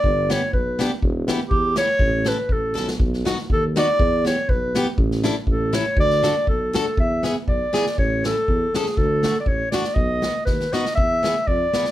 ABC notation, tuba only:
X:1
M:2/4
L:1/8
Q:"Swing" 1/4=121
K:D
V:1 name="Tuba" clef=bass
G,,,2 B,,,2 | E,,,2 E,,2 | A,,,2 A,,, B,,, | B,,,2 ^D,,2 |
E,,2 B,,,2 | A,,,2 A,,,2 | D,,2 B,,,2 | [K:Emix] E,,2 B,,, z |
A,,,2 E,, z | D,,2 A,,, z | B,,,2 ^D,, z | E,,2 =F,, z |]